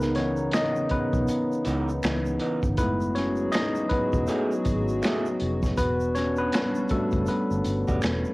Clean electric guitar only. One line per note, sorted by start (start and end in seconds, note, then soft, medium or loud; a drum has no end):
1.28 muted clean electric guitar stroke soft
1.65 1.89 E3 medium
1.65 1.89 B3 medium
1.65 1.90 D#4 medium
2.40 2.59 E3 medium
2.40 2.60 B3 medium
2.40 2.60 D#4 medium
4.28 4.51 A3 medium
4.28 4.52 E4 medium
4.28 4.52 G#4 loud
5.02 5.26 A3 medium
5.02 5.27 E4 medium
5.02 5.27 G#4 medium
7.88 8.01 G3 soft
7.88 8.01 D4 medium
7.88 8.00 F#4 medium